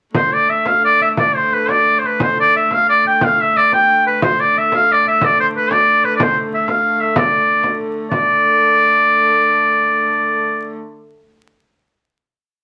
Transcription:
0.14 hurdy-gurdy D3 A3, shawm C5, frame drum
0.32 shawm D5, frame drum
0.49 shawm E5, frame drum
0.66 shawm F5, frame drum
0.84 shawm D5
1.01 shawm E5, frame drum
1.17 shawm D5, frame drum
1.35 shawm C5, frame drum
1.52 shawm B4, frame drum
1.68 shawm D5, frame drum
1.99 shawm C5
2.03 shawm B4, frame drum
2.20 shawm C5, frame drum
2.37 shawm D5, frame drum
2.54 shawm E5, frame drum
2.71 shawm F5, frame drum
2.89 shawm D5
3.05 shawm G5, frame drum
3.21 shawm F5, frame drum
3.41 shawm E5
3.55 shawm D5, frame drum
3.72 shawm G5, frame drum
4.07 shawm B4
4.22 hurdy-gurdy D3 A3, shawm C5, frame drum
4.39 shawm D5, frame drum
4.56 shawm E5, frame drum
4.72 shawm F5, frame drum
4.92 shawm D5
5.05 shawm E5, frame drum
5.21 shawm D5, frame drum
5.38 shawm C5, frame drum
5.55 shawm B4, frame drum
5.71 shawm D5, frame drum
6.04 shawm B4, frame drum
6.16 shawm D5, frame drum
6.22 shawm C5
6.36 frame drum
6.52 shawm E5, frame drum
6.68 shawm F5, frame drum
7.01 shawm E5
7.16 shawm D5, frame drum
7.63 frame drum
7.80 frame drum
8.10 hurdy-gurdy D3 A3, shawm D5, frame drum

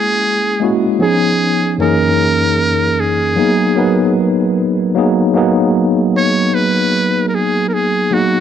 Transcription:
Already playing: tine electric piano G#3 A#3 C#4 E4 G#4, muted trumpet G#4
0.60 tine electric piano G#3 A#3 C#4 E4 F#4
0.99 tine electric piano F3 B3 C#4 D#4 G#4, muted trumpet G#4
1.78 tine electric piano F#2 E3 A#3 C#4 D#4 G#4, muted trumpet A#4
3.00 muted trumpet G#4
3.36 tine electric piano F#3 A#3 B3 D#4 G#4
3.76 tine electric piano F#3 B3 D#4 A#4 B4
4.95 tine electric piano F#3 A#3 B3 D#4 G#4
5.34 tine electric piano F#3 A#3 B3 D#4 G#4
6.17 muted trumpet C#5
6.54 muted trumpet B4
7.29 muted trumpet A#4
7.35 muted trumpet G#4
7.69 muted trumpet A#4
7.74 muted trumpet G#4
8.11 tine electric piano F#3 A#3 B3 D#4 G#4, muted trumpet F#4

